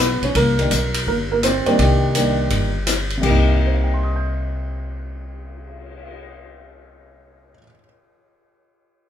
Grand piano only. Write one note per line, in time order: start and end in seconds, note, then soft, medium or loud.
0.00 0.21 B3 medium
0.00 0.24 B4 medium
0.24 0.36 C#4 medium
0.24 0.36 C#5 medium
0.36 0.58 A#3 medium
0.36 1.06 A#4 medium
0.59 0.70 D#3 soft
0.59 0.70 G3 soft
0.59 0.70 A#3 soft
0.59 0.71 D4 medium
1.08 1.14 A#3 medium
1.08 1.13 A#4 medium
1.32 1.38 A#3 medium
1.32 1.37 A#4 medium
1.44 1.66 C4 medium
1.44 1.65 C5 medium
1.66 2.12 D#3 medium
1.66 1.79 G3 medium
1.66 2.13 A#3 medium
1.66 1.79 C4 soft
1.66 2.13 D4 medium
1.66 1.78 C5 medium
1.79 2.14 G3 medium
1.79 2.83 G4 medium
2.15 2.70 D#3 medium
2.15 2.70 G3 medium
2.15 2.70 A#3 medium
2.15 2.70 D4 medium
3.17 7.51 C3 medium
3.22 7.55 G3 medium
3.22 7.59 A#3 medium
3.22 3.57 G4 medium
3.29 7.63 D#4 medium
3.59 7.57 G4 soft
3.66 7.60 C5 soft
3.75 7.65 D#5 soft
3.84 7.69 G5 soft
3.94 7.74 C6 soft
4.04 7.79 D#6 soft
4.16 7.85 G6 soft